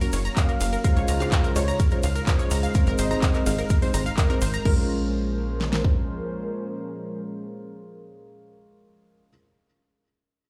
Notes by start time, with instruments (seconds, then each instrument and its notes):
Already playing: analog synth pad F#3 A#3 C#4
0.01 grand piano A#3 C#4 F#4 C#5, synth pluck A#4, open hi-hat, shaker
0.13 analog synth bass F#1, synth pluck C#5, open hi-hat, ride, shaker
0.25 synth pluck A#5, closed hi-hat, shaker
0.36 grand piano A#3 C#4 F#4 C#5, synth pluck A#4 F5, soft synth lead F5, kick, clap, closed hi-hat, shaker
0.49 synth pluck A#4, closed hi-hat, shaker
0.61 analog synth bass F#1, synth pluck F5, open hi-hat, ride, shaker
0.73 synth pluck A#4, closed hi-hat, shaker
0.84 analog synth pad C#3 G#3 D#4 F4, grand piano G#3 C#4 F4 C5, synth pluck A#4 F5, soft synth lead F5, kick, closed hi-hat, shaker
0.96 analog synth bass C#2, synth pluck C#5, closed hi-hat, shaker
1.08 analog synth bass C#2, synth pluck A#5, open hi-hat, ride, shaker
1.20 grand piano G#3 C#4 F4 C5, synth pluck F5, clap, closed hi-hat, shaker
1.32 synth pluck A#4, kick, clap, closed hi-hat, shaker
1.44 synth pluck A#4, closed hi-hat, shaker
1.56 analog synth bass C#2, grand piano G#3 C#4 F4 C5, synth pluck C#5, soft synth lead C#5, open hi-hat, ride, shaker
1.68 synth pluck A#5, closed hi-hat, shaker
1.80 synth pluck A#4, kick, closed hi-hat, shaker
1.91 grand piano G#3 C#4 F4 C5, synth pluck A#4, closed hi-hat, shaker
2.03 analog synth bass C#2, synth pluck F5, open hi-hat, ride, shaker
2.15 synth pluck A#4, closed hi-hat, shaker
2.27 grand piano G#3 C#4 F4 C5, synth pluck A#4, kick, clap, closed hi-hat, shaker
2.39 synth pluck C#5, closed hi-hat, shaker
2.51 analog synth bass C#2, synth pluck A#5, open hi-hat, ride, shaker
2.63 synth pluck F5, closed hi-hat, shaker
2.74 grand piano G#3 C4 D#4 C5, synth pluck A#4, kick, closed hi-hat, shaker
2.86 analog synth bass G#1, synth pluck A#4, closed hi-hat, shaker
2.98 analog synth bass G#1, synth pluck C5 D#5, soft synth lead D#5, open hi-hat, ride, shaker
3.11 grand piano G#3 C4 D#4 C5, synth pluck A#5, closed hi-hat, shaker
3.22 synth pluck A#4, kick, clap, closed hi-hat, shaker
3.34 synth pluck A#4, clap, closed hi-hat, shaker
3.46 analog synth bass G#1, grand piano G#3 C4 D#4 C5, synth pluck F5, open hi-hat, ride, shaker
3.58 synth pluck A#4, closed hi-hat, shaker
3.70 synth pluck A#4, kick, closed hi-hat, shaker
3.82 grand piano G#3 C4 D#4 C5, synth pluck C5, open hi-hat, shaker
3.94 analog synth bass G#1, grand piano G#3 C4 D#4 C5, synth pluck A#5, open hi-hat, ride, shaker
4.06 synth pluck F5, closed hi-hat, shaker
4.17 synth pluck A#4, soft synth lead A#4, kick, clap, closed hi-hat, shaker
4.30 grand piano G#3 C4 D#4 C5, synth pluck A#4, closed hi-hat, shaker
4.41 analog synth bass G#1, synth pluck C5, open hi-hat, ride, shaker
4.53 synth pluck A#5, closed hi-hat, shaker
4.65 analog synth bass A#1, analog synth pad A#2 F3 G#3 C#4 C5, grand piano G#3 C#4 F4 A#4, synth pluck A#4, soft synth lead A#4, kick, crash
5.61 snare
5.73 snare
5.84 kick